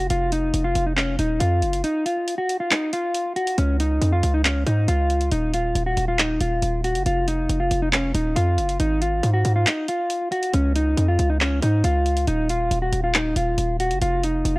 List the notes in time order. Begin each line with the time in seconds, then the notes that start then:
0.10 F1 F4, closed hi-hat
0.32 D#4, closed hi-hat
0.54 F1, closed hi-hat
0.64 F4
0.75 F1, closed hi-hat
0.86 D#4
0.96 C#4, clap, closed hi-hat
1.19 D#1 D#4, closed hi-hat
1.40 F2 F4, closed hi-hat
1.62 F#1, closed hi-hat
1.73 closed hi-hat
1.84 D#4, closed hi-hat
2.06 F4, closed hi-hat
2.28 closed hi-hat
2.38 F#4
2.49 closed hi-hat
2.60 F4
2.71 D#4, clap, closed hi-hat
2.93 F4, closed hi-hat
3.14 closed hi-hat
3.36 F#4, closed hi-hat
3.47 closed hi-hat
3.58 C#2 C#4, closed hi-hat
3.80 D#4, closed hi-hat
4.01 F2, closed hi-hat
4.12 F4
4.23 C#2, closed hi-hat
4.34 D#4
4.45 C#4, clap, closed hi-hat
4.67 G#2 D#4, closed hi-hat
4.88 C#2 F4, closed hi-hat
5.10 closed hi-hat
5.21 closed hi-hat
5.32 D#1 D#4, closed hi-hat
5.54 F4, closed hi-hat
5.75 D#1, closed hi-hat
5.86 F#4
5.97 D#1, closed hi-hat
6.08 F4
6.19 D#4, clap, closed hi-hat
6.41 D#1 F4, closed hi-hat
6.62 D#1, closed hi-hat
6.84 F#4, closed hi-hat
6.95 F#1, closed hi-hat
7.06 F1 F4, closed hi-hat
7.28 D#4, closed hi-hat
7.49 F1, closed hi-hat
7.60 F4
7.71 F1, closed hi-hat
7.82 D#4
7.92 C#4, clap, closed hi-hat
8.15 D#1 D#4, closed hi-hat
8.36 F2 F4, closed hi-hat
8.58 F#1, closed hi-hat
8.69 closed hi-hat
8.80 G#1 D#4, closed hi-hat
9.01 F4, closed hi-hat
9.23 G#2, closed hi-hat
9.34 F#4
9.45 G#2, closed hi-hat
9.56 F4
9.67 D#4, clap, closed hi-hat
9.88 F4, closed hi-hat
10.10 closed hi-hat
10.32 F#4, closed hi-hat
10.43 closed hi-hat
10.54 C#2 C#4, closed hi-hat
10.75 D#4, closed hi-hat
10.97 F2, closed hi-hat
11.08 F4
11.19 C#2, closed hi-hat
11.30 D#4
11.41 C#4, clap, closed hi-hat
11.62 G#2 D#4, closed hi-hat
11.84 C#2 F4, closed hi-hat
12.06 closed hi-hat
12.17 closed hi-hat
12.27 D#1 D#4, closed hi-hat
12.49 F4, closed hi-hat
12.71 D#1, closed hi-hat
12.82 F#4
12.93 D#1, closed hi-hat
13.04 F4
13.14 D#4, clap, closed hi-hat
13.36 D#1 F4, closed hi-hat
13.58 D#1, closed hi-hat
13.80 F#4, closed hi-hat
13.91 F#1, closed hi-hat
14.01 F1 F4, closed hi-hat
14.23 D#4, closed hi-hat
14.45 F1, closed hi-hat
14.56 F4